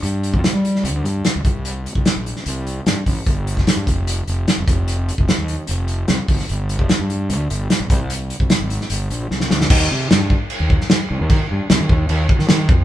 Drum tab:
CC |----------------|----------------|----------------|----------------|
HH |x-x-x-x-x-x-x-x-|x-x-x-x-x-x-x-o-|x-x-x-x-x-x-x-x-|x-x-x-x-x-x-x-o-|
SD |----o--o----o---|----o--o----o---|---oo-------o---|----o-------o--o|
BD |---o----------o-|---o----------o-|o--o--o-------o-|---o----------o-|

CC |----------------|----------------|x---x---x---x---|x---x---x---x---|
HH |x-x-x-x-x-x-x-x-|x-x-x-x-x-x-----|----------------|----------------|
SD |----o-------o---|----o--o----oooo|----o------oo---|----o------oo---|
BD |---o----------o-|---o------------|o-----o---o-----|o-----o---o---o-|